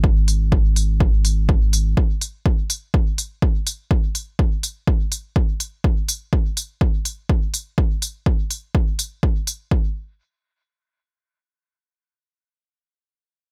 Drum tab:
HH |-o-o-o-o|-o-o-o-o|-o-o-o-o|-o-o-o-o|
BD |o-o-o-o-|o-o-o-o-|o-o-o-o-|o-o-o-o-|

HH |-o-o-o-o|--------|--------|
BD |o-o-o-o-|o-------|--------|